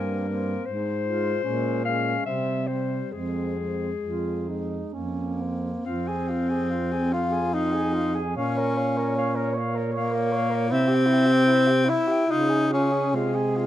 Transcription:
0.00 0.57 G2 soft
0.00 0.28 A#3 soft
0.00 0.27 C4 soft
0.00 0.67 A#4 soft
0.28 0.66 A#3 soft
0.28 0.65 C4 soft
0.66 1.34 G#2 soft
0.66 1.84 C5 medium
1.02 1.43 G#3 soft
1.02 1.42 F4 soft
1.43 2.15 A#2 medium
1.43 1.84 G#3 soft
1.43 1.83 C#4 soft
1.84 2.25 G#3 soft
1.84 2.25 C#4 soft
1.84 2.25 F5 medium
2.24 3.01 C3 soft
2.24 2.68 G3 soft
2.24 2.68 C4 soft
2.24 2.69 E5 medium
2.67 3.12 G3 soft
2.67 3.12 C4 soft
2.67 3.13 C5 soft
3.12 3.91 F2 soft
3.12 3.57 G#3 soft
3.12 3.57 C4 soft
3.12 4.93 G#4 soft
3.57 4.46 G#3 soft
3.57 3.92 C4 soft
4.01 4.82 F2 soft
4.01 4.50 F4 soft
4.48 4.93 G#3 soft
4.48 4.95 D#4 soft
4.92 5.74 F2 soft
4.92 5.87 A#3 soft
4.92 5.43 C#4 soft
5.41 5.86 C4 soft
5.83 8.32 F2 soft
5.83 7.14 C4 medium
5.83 6.10 F4 soft
5.83 6.09 F5 soft
6.07 6.32 G#4 soft
6.07 6.29 G#5 soft
6.28 6.52 F4 soft
6.28 6.51 F5 soft
6.49 6.71 G#4 soft
6.49 6.69 G#5 soft
6.69 6.94 F4 soft
6.69 6.93 F5 soft
6.92 7.14 G#4 soft
6.92 7.14 G#5 soft
7.12 7.32 F4 soft
7.12 7.56 F4 medium
7.12 7.34 F5 soft
7.31 7.52 G#4 soft
7.31 7.53 G#5 soft
7.53 8.21 D#4 medium
7.53 7.75 F4 soft
7.53 7.74 F5 soft
7.72 7.95 G#4 soft
7.72 7.97 G#5 soft
7.93 8.15 F4 soft
7.93 8.16 F5 soft
8.13 8.35 G#4 soft
8.13 8.35 G#5 soft
8.36 10.73 A#2 soft
8.36 9.54 C#4 medium
8.36 8.59 C#5 soft
8.36 8.59 F5 soft
8.57 8.79 A#4 soft
8.57 8.79 C#5 soft
8.77 8.99 C#5 soft
8.77 8.99 F5 soft
8.98 9.16 A#4 soft
8.98 9.17 C#5 soft
9.16 9.37 C#5 soft
9.16 9.37 F5 soft
9.35 9.55 A#4 soft
9.35 9.60 C#5 soft
9.54 9.76 C#5 soft
9.58 9.80 F5 soft
9.75 9.92 A#4 soft
9.75 9.96 C#5 soft
9.93 10.73 A#3 medium
9.93 10.13 C#5 soft
9.93 10.17 F5 soft
10.12 10.33 A#4 soft
10.12 10.37 C#5 soft
10.32 10.52 C#5 soft
10.32 10.57 F5 soft
10.50 10.68 A#4 soft
10.55 10.73 C#5 soft
10.69 12.02 C3 medium
10.69 11.90 C4 medium
10.69 10.90 E4 soft
10.73 10.96 E5 medium
10.88 11.08 G4 soft
10.95 11.15 G5 soft
11.06 11.28 E4 soft
11.14 11.34 E5 soft
11.26 11.45 G4 soft
11.32 11.51 G5 soft
11.46 11.69 E4 soft
11.53 11.73 E5 soft
11.67 11.87 G4 soft
11.67 11.91 G5 soft
11.85 12.09 E4 soft
11.85 12.33 E4 medium
11.90 12.13 E5 soft
12.08 12.26 G4 soft
12.08 12.29 G5 soft
12.27 13.15 C#3 medium
12.27 12.51 F4 soft
12.27 12.51 F5 soft
12.31 12.72 D#4 medium
12.49 12.72 G#4 soft
12.49 12.74 G#5 soft
12.71 13.16 C#4 medium
12.71 12.93 F4 soft
12.71 12.96 F5 soft
12.91 13.12 G#4 soft
12.91 13.14 G#5 soft
13.12 13.66 C3 soft
13.12 13.66 G#3 medium
13.12 13.35 F4 soft
13.12 13.37 F5 soft
13.34 13.58 G#4 soft
13.34 13.57 G#5 soft
13.55 13.66 F4 soft
13.55 13.66 F5 soft

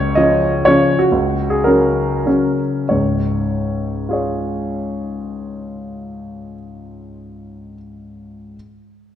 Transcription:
0.00 0.15 C#2 soft
0.00 0.16 C#5 medium
0.15 0.62 C#3 soft
0.15 0.62 F3 soft
0.15 0.62 C#4 soft
0.15 0.65 D#5 medium
0.65 1.09 C#3 soft
0.65 1.09 F3 soft
0.65 1.09 C#4 soft
0.65 1.00 C#5 medium
0.99 1.50 F#4 medium
1.12 1.64 C#2 soft
1.50 1.65 G#4 soft
1.64 2.22 C#3 soft
1.64 2.22 F#3 soft
1.64 2.23 C#4 soft
1.64 2.59 A#4 medium
2.26 2.87 C#3 soft
2.26 2.87 F#3 soft
2.26 2.87 C#4 soft
2.89 6.55 C#2 soft
2.89 6.55 G#2 soft
2.89 4.11 C#5 soft
4.09 7.73 F4 soft
4.09 7.75 G#4 soft
4.13 7.77 C#5 soft

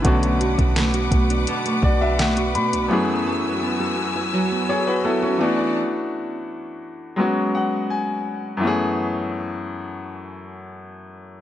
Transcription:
0.00 2.85 D3 medium
0.00 2.12 F#3 medium
0.00 2.86 A3 medium
0.00 0.22 B3 medium
0.00 0.12 E4 medium
0.00 0.40 A4 medium
0.00 5.36 B4 medium
0.04 0.56 B1 loud
0.04 1.47 B2 medium
0.04 2.87 B3 medium
0.04 2.87 C#4 medium
0.04 2.88 F#4 medium
0.04 2.87 F#5 medium
0.04 2.87 D6 medium
0.04 kick loud
0.04 closed hi-hat medium
0.22 0.76 A3 medium
0.22 closed hi-hat medium
0.41 0.94 F#4 medium
0.41 closed hi-hat medium
0.58 1.10 B1 loud
0.58 1.29 D4 medium
0.58 kick medium
0.58 closed hi-hat medium
0.76 1.12 A3 medium
0.76 snare loud
0.76 closed hi-hat medium
0.94 1.83 F#4 medium
0.94 closed hi-hat soft
1.11 1.46 B1 loud
1.11 1.65 A3 medium
1.11 kick loud
1.11 closed hi-hat medium
1.30 2.00 D4 medium
1.30 closed hi-hat medium
1.47 2.98 B2 medium
1.47 closed hi-hat medium
1.66 2.19 A3 medium
1.66 closed hi-hat medium
1.83 2.56 B1 loud
1.83 2.36 F#4 medium
1.83 2.00 D5 medium
1.83 kick loud
2.01 2.72 D4 medium
2.01 2.18 E5 medium
2.19 2.55 A3 medium
2.19 2.52 F#5 medium
2.19 snare loud
2.19 closed hi-hat medium
2.37 3.26 F#4 medium
2.37 closed hi-hat medium
2.55 2.74 B2 loud
2.55 3.08 A3 medium
2.55 2.88 B5 medium
2.55 closed hi-hat medium
2.73 2.90 B1 loud
2.73 2.98 D4 medium
2.73 closed hi-hat medium
2.88 5.35 F#2 medium
2.88 5.36 E3 medium
2.88 4.33 F#3 medium
2.88 5.36 A3 medium
2.88 5.37 B3 medium
2.88 4.66 C#4 medium
2.88 5.38 F#4 medium
2.88 5.38 G#5 medium
2.88 5.73 E6 medium
2.93 4.67 G#4 medium
3.09 3.62 B3 medium
3.26 3.80 A4 medium
3.44 4.15 E4 medium
3.62 3.97 B3 medium
3.80 4.69 A4 medium
3.98 4.51 B3 medium
4.16 4.87 E4 medium
4.33 5.40 F#3 medium
4.51 5.04 B3 medium
4.69 4.86 G#4 medium
4.69 5.21 A4 medium
4.69 4.86 C#5 medium
4.87 5.48 E4 medium
4.87 5.04 F#4 medium
4.87 5.04 B4 medium
5.05 6.33 B3 medium
5.05 5.22 E4 medium
5.05 5.22 A4 medium
5.22 5.57 C#4 medium
5.22 5.41 F#4 medium
5.22 5.47 A4 medium
5.38 7.14 E3 medium
5.38 5.83 E3 medium
5.38 7.15 A3 medium
5.38 7.15 B3 medium
5.38 7.16 D4 medium
5.38 5.76 D5 medium
5.38 5.76 F#5 medium
5.38 5.76 A5 medium
5.43 7.17 F#4 medium
5.59 5.83 D4 medium
7.16 8.58 F#3 medium
7.16 8.58 G#3 medium
7.16 8.59 B3 medium
7.16 8.59 C#4 medium
7.21 8.60 F#4 medium
7.55 7.88 F#5 medium
7.90 8.58 G#5 medium
8.57 11.41 F#2 medium
8.57 11.41 E3 medium
8.61 11.41 A3 medium
8.61 11.41 B3 medium
8.61 11.41 C#4 medium
8.67 11.41 G#4 medium

